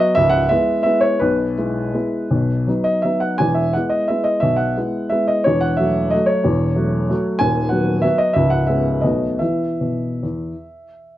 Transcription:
upright piano
Already playing: F#3 B3 F#4 D#5
0.15 C#1 C#2 E5
0.29 F#5
0.49 G#3 B3 E4 E5
0.83 G#3 B3 E4 E5
1.01 C#5
1.19 B1 B2 B4
1.58 G#3 B3 E4
1.94 G#3 B3 E4
2.30 B1 B2
2.67 F#3 B3 D#4
2.84 D#5
3.02 F#3 B3 D#4 E5
3.20 F#5
3.38 E1 E2 G#5
3.55 E5
3.73 G#3 B3 E4 F#5
3.89 D#5
4.08 G#3 B3 E4 E5
4.24 D#5
4.40 B1 B2 E5
4.56 F#5
4.77 G#3 B3 E4
5.09 G#3 B3 E4 E5
5.28 D#5
5.44 E1 E2 C#5
5.61 F#5
5.77 F#3 A3 F#4 E5
6.10 F#3 A3 F#4 D#5
6.26 C#5
6.44 E1 E2
6.76 F#3 A3 F#4
7.09 F#3 A3 F#4
7.39 D#1 D#2 G#5
7.69 F#3 B3 F#4 F#5
8.02 F#3 B3 F#4 E5
8.18 D#5
8.34 C#1 C#2 E5
8.50 F#5
8.67 G#3 B3 C#4 E5
9.01 B1 B2 A3 B3 D#5
9.05 F#4
9.39 E3 B3 E4 E5
9.81 B2
10.23 E2

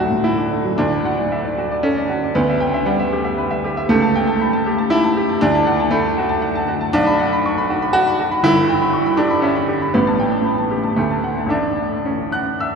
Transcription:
grand piano
Already playing: D2 A2 F#3 A3 D4 F#4 D5 F#5
0.10 A2
0.24 A3 E4
0.38 D4
0.52 A3
0.65 F#3
0.78 D2 D4
0.92 D5
1.05 F#5
1.18 D5
1.32 E5
1.45 D5
1.58 F#4
1.71 D5
1.83 C#4 A4
1.97 D5
2.10 F#4
2.24 D5
2.35 D2 B3
2.49 E5
2.60 G5
2.74 E5
2.86 G3 F#5
3.00 E5
3.12 G4
3.25 E5
3.38 B4
3.51 E5
3.64 G4
3.77 E5
3.89 C#2 A3
4.02 A5
4.16 G5
4.27 A5
4.41 B5
4.53 A5
4.66 G4
4.78 A5
4.90 E4 E5
5.04 A5
5.16 G4
5.29 A5
5.41 D2 D4
5.55 A5
5.67 F#5
5.80 A5
5.91 A3 B5
6.04 A5
6.18 F#4
6.29 A5
6.42 F#5
6.55 A5
6.68 F#4
6.81 A5
6.93 B1 D4
7.07 B5
7.19 F#5
7.33 B5
7.46 C#6
7.58 B5
7.70 F#4
7.82 B5
7.93 F#4 F#5
8.07 B5
8.20 F#4
8.31 B5
8.43 G1 G2 E4
8.56 B5
8.69 G5
8.82 B5
8.93 C#6
9.06 B5
9.17 D4 G4
9.31 B5
9.42 C#4 E5
9.56 B5
9.68 G4
9.82 B5
9.94 A1 A2 B3
10.07 A5
10.19 G5
10.32 A5
10.45 B5
10.58 A5
10.71 G4
10.83 A5
10.96 D2 A3
11.11 A5
11.24 F#5
11.38 A5
11.46 A1 A4 E5
11.50 D4 A5
12.05 C#4
12.32 F#5 F#6
12.60 E5 E6

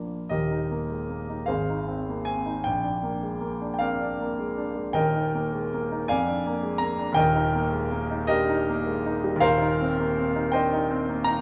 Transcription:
grand piano
Already playing: F3 A#3 D4
0.29 D#1 D#2 G4 A#4 D#5
0.51 D#4
0.71 A#3
0.91 G#3
1.10 A#3
1.29 D#4
1.46 G#1 G#4 C5 F5
1.70 D#4
1.88 C4
2.09 A#3
2.25 C4 G#5
2.46 D#4
2.64 A#1 G5
2.84 D4
3.03 A#3
3.23 G#3
3.41 A#3
3.61 D4
3.74 G5
3.79 C4 A#4 D5 F5
4.01 D4
4.21 A#3
4.39 G#3
4.58 D4
4.75 G#3
4.93 D#1 D#2 A#4 D#5 G5
5.15 D#4
5.34 A#3
5.53 G#3
5.73 A#3
5.92 D#4
6.08 F2 D5 F5 G#5
6.28 D4
6.46 A#3
6.63 G#3
6.78 A#3 A#5
6.99 D4
7.12 D#2 D#5 G5
7.16 D#1 A#4
7.36 D#4
7.55 A#3
7.72 G#3
7.92 A#3
8.11 D#4
8.27 D4 G4 A#4 D#5
8.49 D#4
8.69 A#3
8.87 G#3
9.06 D#4
9.24 G3
9.36 D#2
9.40 D#1 A#4 C5 F5
9.62 D#4
9.81 C4
10.00 A#3
10.17 C4
10.36 D#4
10.52 D4 C5 D#5 G5
10.73 D#4
10.91 C4
11.09 A#3
11.24 D#4 A#5

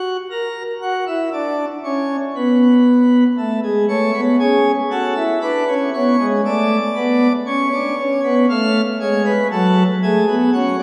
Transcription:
pipe organ
Already playing: F#4
0.31 A#4
0.82 F#4
1.07 E4
1.33 D4
1.84 C#4
2.36 B3
3.38 A3
3.64 G#3
3.89 A3 C#5
4.14 B3
4.40 C#4 G#4
4.91 F#4 A4
5.16 E4
5.42 D4 B4
5.68 C#4
5.94 B3 C#5
6.19 G#3
6.45 A3 D5
6.96 B3
7.46 C#4 C#5
7.73 D4
7.98 C#4
8.24 B3
8.50 A3 F5
9.00 G#3 C#5
9.25 B4
9.52 F#3 A4
10.03 A3 G#4
10.28 B3
10.53 C#4 F#4
10.80 D4

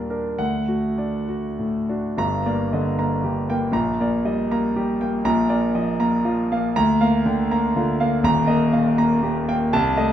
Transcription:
grand piano
Already playing: D#2 A#2 G3 D4 A#4 D5 A#5
0.10 D4 A#4
0.39 D2 F#5
0.68 A3 F#4
0.98 D4 D5
1.28 F#4
1.59 A2
1.89 D4 F#4
2.17 G1 G2 A#5
2.46 A#3 D5
2.73 D3 D#5
2.99 A#3 A#5
3.24 D3 G4
3.50 A#3 G5
3.72 A#1 A#2 A#5
4.00 A#3 D5
4.25 G3 D#5
4.51 A#3 A#5
4.76 G3 G4
5.01 A#3 G5
5.25 A#1 A#2 A#5
5.49 A#3 D5
5.75 F3 D#5
6.00 A#3 A#5
6.25 F3 F4
6.52 A#3 F5
6.76 D2 A#5
7.01 A#3 F5
7.26 D3 G5
7.51 A#3 A#5
7.76 D3 F4
8.00 A#3 F5
8.23 D#1 D#2 A#5
8.47 A#3 D#5
8.73 A#2 F5
8.98 A#3 A#5
9.22 A#2 G4
9.48 A#3 G5
9.73 C2 A5
9.97 A3 D#5

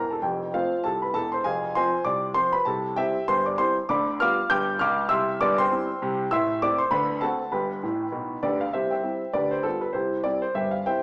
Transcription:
grand piano
Already playing: E1 E2 A#4 A#5
0.11 A4 A5
0.22 F1 F2 G4 G5
0.54 A3 C4 F4 C5 F5
0.84 C2 C3 A4 A5
1.02 B4 B5
1.14 E1 E2 A4 A5
1.32 C5 C6
1.44 F1 F2 G#4 F5 G#5
1.75 F3 C4 F4 C5 G#5 C6
2.04 C2 C3 D5 D6
2.34 F3 C4 F4 C5 C6
2.53 B4 B5
2.65 C2 C3 A4 A5
2.96 G3 C4 E4 G4 E5 G5
3.28 G1 G2 C5 C6
3.46 D5 D6
3.58 G3 C4 E4 C5 C6
3.89 D2 D3 D5 B5 D6
4.20 G3 B3 F4 F5 D6 F6
4.50 G1 G2 G5 D6 G6
4.79 C#2 C#3 F5 D6 F6
5.09 C2 C3 E5 C6 E6
5.41 G1 G2 D5 D6
5.58 C5 G5 C6
5.71 G3 C4 E4
6.02 C2 C3
6.31 A1 A2 E5 C6 E6
6.62 A3 C4 E4 D5 D6
6.78 C5 C6
6.91 D2 D3 B4 B5
7.21 A3 C4 F#4 A4 F#5 A5
7.52 G1 G2 B4 G5 B5
7.83 A1 A2
8.12 B1 B2
8.43 D2 D3 G4 B4 D5
8.61 F5
8.73 C2 C3 G4 C5 E5
8.90 C5 E5 G5
9.03 G3 C4 E4
9.33 D2 D3 G4 B4 D5
9.51 C5
9.63 G3 B3 F4 A4
9.81 B4
9.93 C2 C3 E4 G4 C5
10.24 G3 C4 E4 D5
10.42 C5
10.54 G1 G2 G4 C5 E5
10.71 F5
10.86 G3 C4 E4 C5 E5 G5

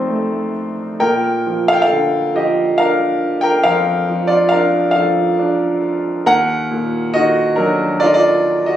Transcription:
grand piano
Already playing: F2 C3 A3 C4 D#4 F4 C5 D5
0.08 A3
1.00 A#2 A#4 G5
1.47 F3
1.68 A4 F5
1.73 G5
1.82 A4 F5
1.91 D3
2.35 F3 G4 D#5
2.78 D4 A#4 F5
3.41 A#4 G5
3.63 F2 A#4 F5
4.09 F3
4.27 F4 D5
4.49 D4 A#4 F5
4.91 A4 F5
4.95 F3
5.39 D4
6.26 D#2 A#4 F#5
6.71 A#2
7.14 D#3 F#4 D#5
7.56 F#3 D4 A#4
8.00 D#3 F4 D5
8.06 D#5
8.14 F4 D5
8.66 F#4 D#5

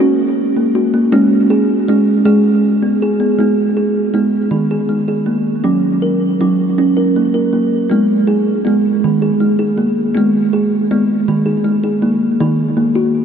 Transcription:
kalimba
0.00 C#4 F#4
0.56 A#3
0.75 F#4
0.94 A#3
1.12 G#3 C#4
1.50 G#4
1.88 G#3 C#4
2.25 G#3 G#4
2.82 B3
3.02 G#4
3.20 B3
3.39 G#3 B3
3.77 G#4
4.14 G#3 B3
4.51 D#3
4.71 G#4
4.89 G#3
5.08 G#4
5.26 A#3
5.64 F#3 C#4
6.02 A#4
6.41 F#3 C#4
6.78 C#4
6.97 A#4
7.16 A#3
7.34 A#4
7.53 A#3
7.90 G#3 B3
8.27 G#4
8.65 G#3 B3
9.04 D#3
9.22 G#4
9.40 G#3
9.59 G#4
9.78 A#3
10.15 G#3 B3
10.53 G#4
10.91 G#3 B3
11.28 D#3
11.46 G#4
11.64 G#3
11.84 G#4
12.02 A#3
12.40 D#3
12.77 A#3
12.95 F#4

